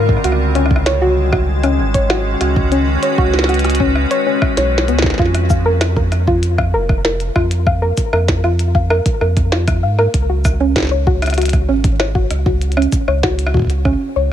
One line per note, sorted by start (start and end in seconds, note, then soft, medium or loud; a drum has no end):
0.00 0.18 G#2 loud
0.00 0.24 D3 medium
0.00 0.24 G3 medium
0.00 0.24 C4 medium
0.00 0.24 F4 medium
0.00 0.24 A#4 medium
0.09 kick medium
0.09 cross-stick soft
0.17 cross-stick soft
0.24 1.80 C#2 loud
0.24 5.19 D#3 medium
0.24 0.37 F#4 medium
0.24 cross-stick soft
0.24 closed hi-hat medium
0.32 cross-stick soft
0.55 0.70 C#4 loud
0.55 cross-stick soft
0.55 closed hi-hat medium
0.61 5.19 G#3 medium
0.66 cross-stick soft
0.71 kick loud
0.76 cross-stick medium
0.86 0.99 C#5 medium
0.86 cross-stick medium
0.86 snare loud
0.86 closed hi-hat medium
1.02 1.15 F#4 loud
1.33 1.46 F#4 medium
1.33 kick loud
1.33 cross-stick medium
1.50 5.19 C#4 medium
1.64 1.78 C#4 loud
1.64 cross-stick medium
1.64 closed hi-hat soft
1.79 2.36 G#1 loud
1.94 5.19 F#4 medium
1.94 2.07 C#5 medium
1.94 kick loud
1.94 closed hi-hat medium
2.10 2.23 F#4 loud
2.10 cross-stick medium
2.10 snare loud
2.41 2.98 C#2 medium
2.41 2.54 F#4 medium
2.41 cross-stick medium
2.41 closed hi-hat medium
2.47 5.19 B4 medium
2.56 kick loud
2.72 2.86 C#4 loud
2.72 closed hi-hat medium
3.03 3.16 C#5 medium
3.03 closed hi-hat medium
3.18 4.06 C#2 medium
3.18 3.31 F#4 loud
3.18 kick loud
3.34 snare soft
3.39 snare medium
3.44 snare medium
3.49 3.62 F#4 medium
3.49 closed hi-hat soft
3.54 closed hi-hat medium
3.59 closed hi-hat medium
3.65 cross-stick medium
3.65 closed hi-hat medium
3.70 closed hi-hat medium
3.75 closed hi-hat medium
3.80 3.95 C#4 loud
3.80 kick medium
3.95 cross-stick medium
4.11 4.24 C#5 medium
4.11 closed hi-hat medium
4.26 4.41 C#4 medium
4.42 kick loud
4.42 cross-stick medium
4.57 4.90 B1 medium
4.57 4.65 C#5 medium
4.57 snare medium
4.57 closed hi-hat medium
4.78 snare medium
4.88 5.13 C#2 medium
4.88 5.03 B3 medium
4.88 closed hi-hat medium
4.99 snare loud
5.02 kick loud
5.02 snare medium
5.06 snare medium
5.10 snare soft
5.14 snare soft
5.18 6.75 F2 loud
5.18 5.34 F4 loud
5.18 kick loud
5.18 snare soft
5.22 snare soft
5.26 snare soft
5.35 cross-stick medium
5.35 closed hi-hat medium
5.50 5.63 F5 medium
5.50 kick loud
5.50 shaker medium
5.66 5.79 A#4 loud
5.81 cross-stick medium
5.81 snare loud
5.81 closed hi-hat medium
5.96 6.09 A#4 medium
5.96 kick loud
6.12 cross-stick medium
6.12 closed hi-hat medium
6.27 6.42 F4 loud
6.27 kick loud
6.43 closed hi-hat medium
6.58 6.71 F5 medium
6.58 kick loud
6.58 cross-stick medium
6.74 7.31 F1 loud
6.74 6.87 A#4 loud
6.89 kick loud
6.89 cross-stick medium
7.05 7.18 A#4 medium
7.05 snare loud
7.20 closed hi-hat medium
7.36 7.93 F2 medium
7.36 7.50 F4 loud
7.36 kick loud
7.36 cross-stick medium
7.51 closed hi-hat medium
7.67 7.80 F5 medium
7.67 kick loud
7.67 cross-stick medium
7.82 7.95 A#4 loud
7.98 kick loud
7.98 closed hi-hat loud
7.98 shaker medium
8.13 9.01 F2 medium
8.13 8.26 A#4 medium
8.13 cross-stick medium
8.28 kick loud
8.28 snare loud
8.28 closed hi-hat medium
8.44 8.59 F4 loud
8.44 cross-stick medium
8.59 closed hi-hat medium
8.75 8.88 F5 medium
8.75 kick loud
8.90 9.03 A#4 loud
8.90 cross-stick medium
9.06 kick loud
9.06 closed hi-hat medium
9.21 9.85 F2 medium
9.21 9.34 A#4 medium
9.21 cross-stick medium
9.37 kick loud
9.37 closed hi-hat medium
9.52 9.67 F4 loud
9.52 snare loud
9.68 kick loud
9.68 cross-stick medium
9.68 closed hi-hat medium
9.83 10.08 G#2 medium
9.83 9.96 F5 medium
9.99 10.12 A#4 loud
9.99 cross-stick medium
10.14 11.70 C#2 loud
10.14 kick loud
10.14 closed hi-hat loud
10.29 10.42 F#4 medium
10.45 kick loud
10.45 cross-stick medium
10.45 closed hi-hat medium
10.45 shaker medium
10.60 10.75 C#4 loud
10.76 kick loud
10.76 cross-stick medium
10.76 snare loud
10.76 closed hi-hat medium
10.78 snare medium
10.80 snare medium
10.82 snare medium
10.85 snare medium
10.87 snare soft
10.89 11.04 C#5 medium
10.89 snare soft
11.07 11.20 F#4 loud
11.07 kick loud
11.22 cross-stick medium
11.22 closed hi-hat soft
11.26 cross-stick medium
11.26 closed hi-hat medium
11.30 cross-stick medium
11.30 closed hi-hat medium
11.34 11.51 F#4 medium
11.34 cross-stick soft
11.34 closed hi-hat medium
11.38 closed hi-hat medium
11.42 cross-stick soft
11.42 closed hi-hat medium
11.45 cross-stick soft
11.45 closed hi-hat medium
11.49 cross-stick soft
11.49 closed hi-hat medium
11.53 kick loud
11.53 closed hi-hat medium
11.69 12.26 G#1 loud
11.69 11.83 C#4 loud
11.84 kick loud
11.84 closed hi-hat medium
12.00 12.13 C#5 medium
12.00 cross-stick medium
12.00 snare loud
12.15 12.28 F#4 loud
12.15 kick loud
12.31 12.87 C#2 medium
12.31 cross-stick medium
12.31 closed hi-hat medium
12.46 12.59 F#4 medium
12.46 kick loud
12.62 closed hi-hat medium
12.72 closed hi-hat soft
12.77 12.92 C#4 loud
12.77 cross-stick medium
12.82 closed hi-hat soft
12.92 kick loud
12.92 closed hi-hat medium
12.92 shaker medium
13.08 13.96 C#2 medium
13.08 13.21 C#5 medium
13.08 cross-stick medium
13.23 13.36 F#4 loud
13.23 kick loud
13.23 snare loud
13.39 closed hi-hat medium
13.46 cross-stick medium
13.54 13.67 F#4 medium
13.54 kick loud
13.57 kick medium
13.59 kick medium
13.62 kick medium
13.65 kick soft
13.67 kick soft
13.67 closed hi-hat soft
13.85 14.00 C#4 loud
13.85 kick loud
13.85 cross-stick soft
14.16 14.32 C#2 medium
14.16 14.29 C#5 medium